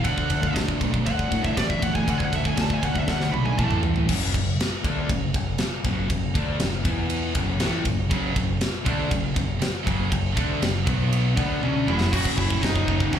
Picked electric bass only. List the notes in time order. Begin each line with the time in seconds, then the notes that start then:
0.04 D2
0.31 D2
0.56 D2
0.81 B1
1.07 D2
1.32 A2
1.58 A1
1.83 A1
2.08 D2
2.58 D2
2.83 D2
3.08 D2
3.33 B1
3.59 A1
4.09 F#1
4.34 F#1
4.84 D2
5.09 F#1
5.35 F#1
5.60 muted picked electric bass stroke
5.85 F#1
6.10 F#1
6.35 D2
6.60 F#1
6.85 E2
7.36 F#1
7.61 A1
7.86 F#1
8.11 F#1
8.37 F#1
8.86 D2
9.11 F#1
9.36 F#1
9.63 muted picked electric bass stroke
9.87 F#1
10.12 F#1
10.37 D2
10.61 F#1
10.87 B1
11.37 D2
11.87 F#1
12.13 F#1
12.38 F#1
12.63 F#1
13.14 F#1